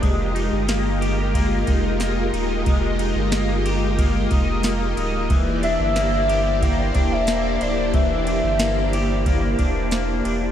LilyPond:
<<
  \new Staff \with { instrumentName = "Soft synth lead" } { \time 4/4 \key f \dorian \tempo 4 = 91 r1 | r1 | r8 e''4. g''8. e''8. d''8 | e''2. r4 | }
  \new Staff \with { instrumentName = "String machine" } { \time 4/4 \key f \dorian <aes f' g' bes' ees''>1~ | <aes f' g' bes' ees''>1 | <bes e' g' c'' d''>1~ | <bes e' g' c'' d''>1 | }
  \new Staff \with { instrumentName = "Clean electric guitar" } { \time 4/4 \key f \dorian aes8 ees'8 bes8 g'8 bes8 ees'8 bes8 ees'8 | aes8 ees'8 bes8 g'8 bes8 ees'8 bes8 ees'8 | e8 d'8 bes8 g'8 bes8 d'8 bes8 d'8 | e8 d'8 bes8 g'8 bes8 d'8 bes8 d'8 | }
  \new Staff \with { instrumentName = "Sub bass" } { \clef bass \time 4/4 \key f \dorian f,,8. g,,4.~ g,,16 f,,4 ees,,8 | f,,8. g,,4.~ g,,16 f,,4 d,,8 | e,,8. g,,4.~ g,,16 e,,4 d,,8 | e,,8. g,,4.~ g,,16 e,,4 e,,8 | }
  \new DrumStaff \with { instrumentName = "Drums" } \drummode { \time 4/4 <bd cymr>8 cymr8 <cymr sn tamb>8 cymr8 <bd cymr>8 <bd cymr>8 <cymr sn tamb>8 cymr8 | <bd cymr>8 cymr8 <cymr sn tamb>8 cymr8 <bd cymr>8 <bd cymr>8 <cymr sn tamb>8 cymr8 | <bd cymr>8 cymr8 <cymr sn tamb>8 cymr8 <bd cymr>8 <bd cymr>8 <cymr sn tamb>8 cymr8 | <bd cymr>8 cymr8 <cymr sn tamb>8 cymr8 <bd cymr>8 <bd cymr>8 <cymr sn tamb>8 cymr8 | }
>>